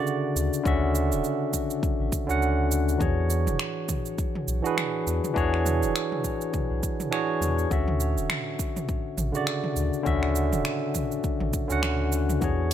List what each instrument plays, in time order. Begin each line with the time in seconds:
Already playing: tine electric piano C#3 D3 C#4 F#4 D5 E5
0.07 cabasa
0.36 sub bass D2, cabasa
0.53 cabasa
0.63 sub bass D2, tine electric piano D3 C#4 F#4, kick, cabasa
0.67 tine electric piano E5
0.95 cabasa
1.12 sub bass D1, cabasa
1.24 cabasa
1.53 kick, cabasa
1.70 cabasa
1.83 kick, cabasa
2.00 sub bass A1
2.12 kick, cabasa
2.27 sub bass D2, tine electric piano D3 C#4 F#4, cabasa
2.31 tine electric piano F#5
2.42 cabasa
2.71 cabasa
2.89 cabasa
2.98 sub bass E2, tine electric piano E3 D4 F#4 G#4 C#5, kick, mid tom, cabasa
3.30 cabasa
3.47 sub bass E1, mid tom, cabasa
3.59 finger snap, cabasa
3.88 kick, mid tom, cabasa
4.06 cabasa
4.18 kick, cabasa
4.35 mid tom
4.47 sub bass B1, cabasa
4.62 tine electric piano E3 D4 F#4 G#4, cabasa
4.67 tine electric piano B4
4.78 finger snap, mid tom, cabasa
5.07 sub bass E2, cabasa
5.24 mid tom, cabasa
5.34 sub bass E2, tine electric piano E3 D4 F#4 G#4 C#5, kick, cabasa
5.54 finger snap
5.66 mid tom, cabasa
5.83 sub bass E1, cabasa
5.96 finger snap, cabasa
6.12 mid tom
6.24 kick, cabasa
6.41 cabasa
6.53 kick, mid tom, cabasa
6.71 sub bass B1
6.83 kick, cabasa
7.00 mid tom, cabasa
7.11 tine electric piano E3 D4 F#4 G#4 C#5, finger snap, cabasa
7.41 sub bass E2, mid tom, cabasa
7.59 cabasa
7.69 sub bass D2, tine electric piano D3 C#4 F#4 E5, kick, cabasa
7.88 mid tom
8.00 cabasa
8.16 sub bass D1, cabasa
8.30 finger snap, mid tom, cabasa
8.59 kick, cabasa
8.77 mid tom, cabasa
8.89 kick, cabasa
9.17 sub bass A1, mid tom, cabasa
9.32 tine electric piano C#3 D3 F#4, cabasa
9.37 tine electric piano D5
9.47 finger snap, cabasa
9.64 mid tom
9.76 sub bass D2, cabasa
9.93 cabasa
10.03 sub bass D2, tine electric piano D3 C#4 F#4 E5, kick, mid tom, cabasa
10.23 finger snap
10.35 cabasa
10.52 sub bass D1, mid tom, cabasa
10.65 finger snap, cabasa
10.94 kick, mid tom, cabasa
11.12 cabasa
11.24 kick, cabasa
11.40 sub bass A1, mid tom
11.53 kick, cabasa
11.68 sub bass D2, tine electric piano D3 C#4 F#4, cabasa
11.72 tine electric piano F#5
11.83 finger snap, mid tom, cabasa
12.12 cabasa
12.29 mid tom, cabasa
12.40 sub bass E2, tine electric piano E3 D4 F#4 G#4, kick, mid tom, cabasa
12.44 tine electric piano C#5